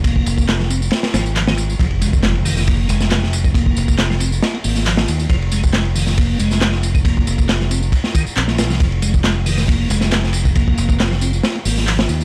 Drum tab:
RD |x-x-x-x-xxx-x-x-|xxx-xx--x-x-x-x-|x-x-x-x-xx--x-x-|xxx-xx--x-x-x-x-|
HH |----------------|------o---------|----------o-----|------o---------|
TB |x-xxx-xxx-xxx-xx|x-xxx-xxx-xxx-xx|x-xxx-xxx-xxx-xx|x-xx--xxx-xx--xx|
CP |----x-------x---|----x-------x---|----x-------x---|----x-------x---|
SD |----oo--ooo--o--|----o--o---ooo--|----oo--o--o-o--|----o--o---ooo--|
BD |oo-o------------|o--o----o------o|oo-o------------|o--o----o------o|

RD |x-x-x-x-x-x-x-x-|xxx-xx--x-x-x-x-|x-x-x-x-xx--x-x-|
HH |----------------|------o---------|----------o-----|
TB |x-xxx-xxx-xxx-xx|x-xxx-xxx-xxx-xx|x-xxx-xxx-xxx-xx|
CP |----x-------x---|----x-------x---|----x-------x---|
SD |----oo---o---ooo|----o--o---ooo--|----oo--o--o-o--|
BD |oo-o----o-o-----|o--o----o------o|oo-o------------|